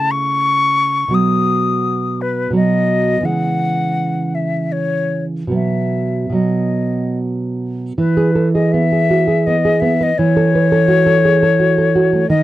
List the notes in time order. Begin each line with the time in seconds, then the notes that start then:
Already playing: C#3 A3 E4 A5
0.11 C#6
1.08 B2 F#3 B3
1.14 D#6
2.21 B4
2.51 B2 F#3 B3
2.56 D#5
3.21 C#3 E3
3.25 G#3 F#5
4.35 E5
4.72 C#5
5.47 B2 F#3
5.52 B3 E5
6.30 B2 F#3
6.35 B3 D#5
7.98 E3 B4
8.17 G#4
8.35 A4
8.53 G#4 D#5
8.72 B3 E5
8.92 G#4
9.10 F#4
9.28 G#4
9.46 B3 D#5
9.65 G#4
9.80 B3 E5
10.01 B4 D#5
10.18 E3 C#5
10.37 A4
10.55 B4
10.72 A4
10.88 F#4
11.06 A4
11.25 G#4
11.43 A4
11.60 F#4
11.78 A4
11.95 F#4
12.13 A3
12.30 D#3 D#5